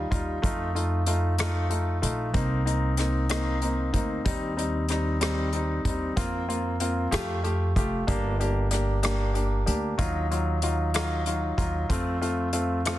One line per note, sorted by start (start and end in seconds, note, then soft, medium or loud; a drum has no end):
0.10 0.41 D#2 medium
0.10 0.37 G3 medium
0.10 0.37 D#4 medium
0.10 0.37 F4 medium
0.10 kick medium
0.10 closed hi-hat soft
0.42 1.99 F2 medium
0.42 0.69 A3 medium
0.42 0.69 D#4 medium
0.42 0.69 F4 medium
0.42 kick medium
0.42 closed hi-hat medium
0.74 1.01 A3 medium
0.74 1.01 D#4 soft
0.74 1.01 F4 medium
0.74 closed hi-hat soft
1.06 1.33 A3 soft
1.06 1.33 D#4 soft
1.06 1.33 F4 medium
1.06 closed hi-hat soft
1.38 1.65 A3 medium
1.38 1.65 D#4 medium
1.38 1.65 F4 medium
1.38 cross-stick medium
1.38 closed hi-hat medium
1.70 1.96 A3 soft
1.70 1.96 D#4 soft
1.70 1.96 F4 soft
1.70 closed hi-hat soft
2.02 2.34 A#1 medium
2.02 2.28 A3 medium
2.02 2.28 D#4 soft
2.02 2.28 F4 medium
2.02 closed hi-hat soft
2.33 3.90 C2 medium
2.33 2.60 A#3 medium
2.33 2.60 C4 medium
2.33 2.60 D#4 medium
2.33 kick medium
2.33 closed hi-hat medium
2.65 2.92 A#3 medium
2.65 2.92 C4 medium
2.65 2.92 D#4 medium
2.65 closed hi-hat soft
2.97 3.24 A#3 medium
2.97 3.24 C4 medium
2.97 3.24 D#4 medium
2.97 cross-stick soft
2.97 closed hi-hat soft
3.29 3.56 A#3 medium
3.29 3.56 C4 medium
3.29 3.56 D#4 medium
3.29 cross-stick medium
3.29 closed hi-hat medium
3.62 3.88 A#3 soft
3.62 3.88 C4 soft
3.62 3.88 D#4 medium
3.62 closed hi-hat soft
3.93 4.24 D2 medium
3.93 4.19 A#3 medium
3.93 4.20 C4 soft
3.93 4.20 D#4 medium
3.93 kick medium
3.93 closed hi-hat medium
4.25 5.81 D#2 medium
4.25 4.51 G3 medium
4.25 4.51 C4 medium
4.25 4.52 D#4 medium
4.25 kick medium
4.25 closed hi-hat medium
4.56 4.83 G3 medium
4.56 4.83 C4 soft
4.56 4.83 D#4 medium
4.56 closed hi-hat soft
4.89 5.16 G3 medium
4.89 5.16 C4 soft
4.89 5.16 D#4 medium
4.89 cross-stick soft
4.89 closed hi-hat medium
5.21 5.47 G3 medium
5.21 5.47 C4 medium
5.21 5.47 D#4 medium
5.21 cross-stick medium
5.21 closed hi-hat medium
5.53 5.79 G3 medium
5.53 5.79 C4 soft
5.53 5.79 D#4 medium
5.53 closed hi-hat soft
5.85 6.15 D#2 medium
5.85 6.11 G3 medium
5.85 6.11 C4 soft
5.85 6.11 D#4 medium
5.85 kick medium
5.85 closed hi-hat soft
6.16 7.08 F2 medium
6.16 6.43 A#3 medium
6.16 6.43 C4 medium
6.16 6.43 F4 medium
6.16 kick medium
6.16 closed hi-hat medium
6.48 6.75 A#3 medium
6.48 6.75 C4 medium
6.48 6.75 F4 medium
6.48 closed hi-hat soft
6.80 7.06 A#3 medium
6.80 7.07 C4 medium
6.80 7.07 F4 medium
6.80 closed hi-hat medium
7.11 7.72 F2 medium
7.11 7.38 A3 medium
7.11 7.38 F4 medium
7.11 7.38 G4 medium
7.11 cross-stick medium
7.11 closed hi-hat medium
7.43 7.70 A3 medium
7.43 7.70 F4 soft
7.43 7.70 G4 medium
7.43 closed hi-hat soft
7.76 8.06 F1 medium
7.76 8.02 A3 medium
7.76 8.02 F4 medium
7.76 8.02 G4 medium
7.76 kick medium
7.76 closed hi-hat soft
8.07 9.63 G1 medium
8.07 8.34 A#3 medium
8.07 8.34 D4 medium
8.07 8.34 G4 medium
8.07 kick medium
8.07 closed hi-hat medium
8.39 8.66 A#3 medium
8.39 8.66 D4 soft
8.39 8.66 G4 medium
8.39 closed hi-hat soft
8.71 8.97 A#3 medium
8.71 8.97 D4 soft
8.71 8.97 G4 medium
8.71 cross-stick soft
8.71 closed hi-hat medium
9.03 9.29 A#3 medium
9.03 9.29 D4 medium
9.03 9.29 G4 medium
9.03 cross-stick medium
9.03 closed hi-hat medium
9.33 9.60 A#3 soft
9.33 9.61 D4 soft
9.33 9.61 G4 soft
9.33 closed hi-hat soft
9.66 9.97 D2 medium
9.66 9.93 A#3 soft
9.66 9.93 D4 soft
9.66 9.93 G4 medium
9.66 closed hi-hat soft
9.98 11.54 D#2 medium
9.98 10.24 F#3 medium
9.98 10.25 D#4 medium
9.98 10.25 F4 medium
9.98 kick medium
9.98 closed hi-hat medium
10.31 10.57 F#3 medium
10.31 10.57 D#4 soft
10.31 10.57 F4 medium
10.31 closed hi-hat soft
10.62 10.89 F#3 medium
10.62 10.89 D#4 soft
10.62 10.89 F4 medium
10.62 closed hi-hat medium
10.94 11.21 F#3 medium
10.94 11.21 D#4 medium
10.94 11.21 F4 medium
10.94 cross-stick medium
10.94 closed hi-hat medium
11.26 11.53 F#3 soft
11.26 11.53 D#4 soft
11.26 11.53 F4 medium
11.26 closed hi-hat soft
11.57 11.88 D#2 medium
11.57 11.84 F#3 medium
11.57 11.84 D#4 medium
11.57 11.84 F4 medium
11.57 kick medium
11.57 closed hi-hat soft
11.89 12.99 F2 medium
11.89 12.16 A3 medium
11.89 12.16 C4 medium
11.89 12.16 F4 medium
11.89 kick medium
11.89 closed hi-hat medium
12.21 12.48 A3 medium
12.21 12.48 C4 soft
12.21 12.48 F4 medium
12.21 closed hi-hat soft
12.53 12.79 A3 medium
12.53 12.79 C4 soft
12.53 12.79 F4 medium
12.53 closed hi-hat medium
12.85 12.99 A3 medium
12.85 12.99 C4 medium
12.85 12.99 F4 medium
12.85 cross-stick medium
12.85 closed hi-hat medium